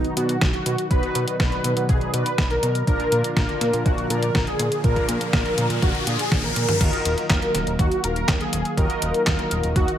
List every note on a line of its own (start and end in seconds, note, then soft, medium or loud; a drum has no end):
0.00 0.14 B2 loud
0.00 2.83 B2 medium
0.00 2.84 D#3 medium
0.00 2.83 F#3 medium
0.00 0.14 B3 medium
0.00 0.14 D#4 medium
0.00 0.87 D#4 medium
0.00 0.14 F#4 medium
0.00 2.83 F#4 medium
0.00 0.14 B4 loud
0.04 closed hi-hat soft
0.17 0.37 B2 medium
0.17 0.31 B2 medium
0.17 0.31 B3 medium
0.17 0.31 D#4 medium
0.17 0.49 F#4 loud
0.17 0.31 F#4 medium
0.17 0.31 D5 medium
0.17 closed hi-hat medium
0.29 closed hi-hat soft
0.41 0.52 B1 loud
0.41 kick loud
0.41 snare loud
0.41 closed hi-hat medium
0.54 0.86 F#4 loud
0.54 closed hi-hat soft
0.66 0.76 B2 medium
0.66 closed hi-hat medium
0.78 closed hi-hat soft
0.90 1.01 B1 loud
0.90 2.11 B2 medium
0.90 2.11 B3 medium
0.90 2.11 D#4 medium
0.90 2.11 F#4 medium
0.90 2.11 B4 loud
0.90 1.34 B4 loud
0.90 6.77 D5 medium
0.90 kick loud
0.90 closed hi-hat soft
1.03 closed hi-hat soft
1.15 1.25 B2 medium
1.15 closed hi-hat medium
1.28 closed hi-hat medium
1.40 1.50 B1 medium
1.40 1.83 B4 loud
1.40 kick loud
1.40 snare loud
1.40 closed hi-hat medium
1.52 closed hi-hat soft
1.64 1.74 B2 medium
1.64 closed hi-hat medium
1.77 1.87 B2 medium
1.77 closed hi-hat medium
1.89 1.99 B1 medium
1.89 2.11 G#4 medium
1.89 kick loud
1.89 closed hi-hat medium
2.01 closed hi-hat soft
2.14 2.28 B2 medium
2.14 2.24 B2 medium
2.14 2.28 B3 medium
2.14 2.28 D#4 medium
2.14 2.28 F#4 medium
2.14 2.46 B4 loud
2.14 2.28 D5 medium
2.14 closed hi-hat medium
2.26 closed hi-hat medium
2.38 2.58 B1 medium
2.38 kick loud
2.38 snare loud
2.38 closed hi-hat medium
2.51 2.83 A#4 loud
2.51 closed hi-hat soft
2.63 2.83 B2 medium
2.63 closed hi-hat medium
2.75 closed hi-hat soft
2.87 2.97 A#1 loud
2.87 6.77 A#2 medium
2.87 4.07 A#2 loud
2.87 6.77 D3 medium
2.87 6.77 F3 medium
2.87 4.07 A#3 medium
2.87 4.07 D4 medium
2.87 6.77 F4 medium
2.87 4.07 F4 medium
2.87 4.07 A#4 loud
2.87 3.31 A#4 loud
2.87 kick loud
2.87 closed hi-hat medium
2.87 riser medium
3.00 closed hi-hat soft
3.12 3.22 A#2 medium
3.12 closed hi-hat medium
3.24 closed hi-hat medium
3.37 3.47 A#1 medium
3.37 3.80 A#4 loud
3.37 kick loud
3.37 snare loud
3.37 closed hi-hat medium
3.49 closed hi-hat soft
3.61 3.71 A#2 medium
3.61 snare soft
3.61 closed hi-hat medium
3.73 3.84 A#2 medium
3.73 closed hi-hat medium
3.86 3.96 A#1 medium
3.86 4.07 F#4 medium
3.86 kick loud
3.86 closed hi-hat medium
3.98 closed hi-hat soft
4.10 4.30 A#2 loud
4.10 4.25 A#2 medium
4.10 4.25 A#3 medium
4.10 4.25 D4 medium
4.10 4.25 F4 medium
4.10 4.43 A#4 loud
4.10 4.25 D5 medium
4.10 closed hi-hat medium
4.23 closed hi-hat medium
4.35 4.45 A#1 loud
4.35 kick loud
4.35 snare loud
4.35 closed hi-hat medium
4.47 4.80 G#4 loud
4.47 closed hi-hat soft
4.59 4.70 A#2 medium
4.59 closed hi-hat loud
4.72 closed hi-hat medium
4.84 4.94 A#1 loud
4.84 6.04 A#2 loud
4.84 6.04 A#3 medium
4.84 6.04 D4 medium
4.84 6.04 F4 medium
4.84 6.04 A#4 loud
4.84 5.28 A#4 loud
4.84 kick loud
4.84 closed hi-hat medium
4.96 kick medium
4.96 closed hi-hat soft
5.09 5.19 A#2 medium
5.09 closed hi-hat medium
5.21 closed hi-hat medium
5.33 5.43 A#1 medium
5.33 5.77 A#4 medium
5.33 kick loud
5.33 snare loud
5.33 closed hi-hat medium
5.46 closed hi-hat soft
5.58 5.68 A#2 medium
5.58 closed hi-hat medium
5.70 5.80 A#2 medium
5.70 closed hi-hat medium
5.82 5.93 A#1 medium
5.82 6.04 F#4 medium
5.82 kick loud
5.82 closed hi-hat medium
5.95 closed hi-hat soft
6.07 6.21 A#2 medium
6.07 6.17 A#2 medium
6.07 6.21 A#3 medium
6.07 6.21 D4 medium
6.07 6.21 F4 medium
6.07 6.40 G#4 loud
6.07 6.21 D5 medium
6.07 closed hi-hat loud
6.19 closed hi-hat medium
6.32 6.52 A#1 loud
6.32 kick loud
6.32 snare loud
6.32 closed hi-hat medium
6.32 high tom medium
6.44 6.77 A#4 medium
6.44 closed hi-hat soft
6.44 high tom medium
6.56 6.66 A#2 loud
6.56 closed hi-hat loud
6.69 closed hi-hat medium
6.69 mid tom medium
6.81 6.91 D#2 loud
6.81 8.01 D#3 loud
6.81 9.98 D#3 medium
6.81 9.98 F#3 medium
6.81 9.98 A#3 medium
6.81 8.01 F4 medium
6.81 8.01 F#4 medium
6.81 8.01 A#4 medium
6.81 7.24 A#4 loud
6.81 8.01 D#5 loud
6.81 9.98 F5 medium
6.81 kick loud
6.81 closed hi-hat medium
6.81 crash loud
6.93 closed hi-hat soft
7.05 7.16 D#1 medium
7.05 closed hi-hat loud
7.18 closed hi-hat soft
7.30 7.40 D#2 medium
7.30 7.73 A#4 loud
7.30 kick loud
7.30 snare loud
7.30 clap medium
7.30 closed hi-hat medium
7.42 closed hi-hat soft
7.55 7.65 D#1 medium
7.55 snare soft
7.55 closed hi-hat loud
7.67 7.77 D#1 medium
7.67 closed hi-hat soft
7.79 7.89 D#2 medium
7.79 8.01 F#4 medium
7.79 kick loud
7.79 closed hi-hat medium
7.92 closed hi-hat soft
8.04 8.24 D#1 medium
8.04 8.18 D#3 medium
8.04 8.18 F4 medium
8.04 8.18 F#4 medium
8.04 8.18 A#4 medium
8.04 8.36 A#4 loud
8.04 8.18 F5 medium
8.04 closed hi-hat medium
8.16 closed hi-hat soft
8.28 8.38 D#2 loud
8.28 kick loud
8.28 snare loud
8.28 clap medium
8.28 closed hi-hat medium
8.41 8.73 G#4 loud
8.41 closed hi-hat soft
8.53 8.63 D#1 medium
8.53 closed hi-hat loud
8.65 closed hi-hat soft
8.77 8.88 D#2 loud
8.77 9.98 D#3 loud
8.77 9.98 F4 medium
8.77 9.98 F#4 medium
8.77 9.21 A#4 loud
8.77 9.98 A#4 medium
8.77 9.98 D#5 loud
8.77 kick loud
8.77 closed hi-hat medium
8.90 closed hi-hat soft
9.02 9.12 D#1 medium
9.02 closed hi-hat medium
9.14 closed hi-hat soft
9.27 9.37 D#2 medium
9.27 9.70 A#4 loud
9.27 kick loud
9.27 snare loud
9.27 clap loud
9.27 closed hi-hat medium
9.39 closed hi-hat soft
9.51 9.62 D#1 medium
9.51 closed hi-hat medium
9.63 9.74 D#1 medium
9.63 closed hi-hat soft
9.76 9.86 D#2 medium
9.76 9.98 F#4 medium
9.76 kick loud
9.76 closed hi-hat medium
9.88 closed hi-hat soft